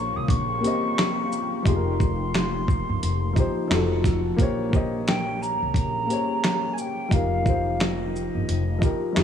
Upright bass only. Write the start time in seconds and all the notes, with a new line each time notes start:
Already playing: A#1
0.17 C2
0.29 A#1
1.66 F1
2.89 G1
3.03 F1
3.71 F1
4.39 A#1
5.63 C2
5.75 A#1
7.12 F1
8.35 G1
8.48 F1
9.17 F1